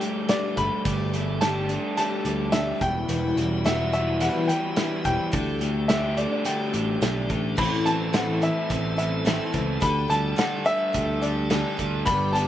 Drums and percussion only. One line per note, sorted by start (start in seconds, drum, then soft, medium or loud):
0.01 closed hi-hat medium
0.29 snare loud
0.29 closed hi-hat medium
0.57 kick medium
0.57 closed hi-hat medium
0.85 kick loud
0.85 closed hi-hat medium
1.14 closed hi-hat medium
1.41 snare loud
1.41 closed hi-hat medium
1.69 closed hi-hat medium
1.97 closed hi-hat medium
2.25 closed hi-hat medium
2.52 snare loud
2.52 closed hi-hat medium
2.81 kick loud
2.81 closed hi-hat medium
3.09 closed hi-hat medium
3.37 closed hi-hat medium
3.66 snare loud
3.66 closed hi-hat medium
3.93 closed hi-hat medium
4.20 closed hi-hat medium
4.49 closed hi-hat medium
4.76 snare loud
4.76 closed hi-hat medium
5.05 kick medium
5.05 closed hi-hat medium
5.33 kick loud
5.33 closed hi-hat medium
5.61 closed hi-hat medium
5.89 snare loud
5.89 closed hi-hat medium
6.17 closed hi-hat medium
6.45 closed hi-hat medium
6.74 closed hi-hat medium
7.02 snare loud
7.02 closed hi-hat medium
7.30 kick medium
7.30 closed hi-hat medium
7.58 kick loud
7.58 crash loud
7.86 closed hi-hat medium
8.14 snare loud
8.14 closed hi-hat medium
8.42 closed hi-hat medium
8.70 kick medium
8.70 closed hi-hat medium
8.99 closed hi-hat medium
9.27 snare loud
9.27 closed hi-hat medium
9.54 kick medium
9.54 closed hi-hat medium
9.82 kick loud
9.82 closed hi-hat medium
10.10 closed hi-hat medium
10.38 snare loud
10.38 closed hi-hat medium
10.66 closed hi-hat medium
10.94 kick medium
10.94 closed hi-hat loud
11.23 closed hi-hat medium
11.50 snare loud
11.50 closed hi-hat loud
11.79 kick medium
11.79 closed hi-hat medium
12.07 kick loud
12.07 closed hi-hat medium
12.35 closed hi-hat medium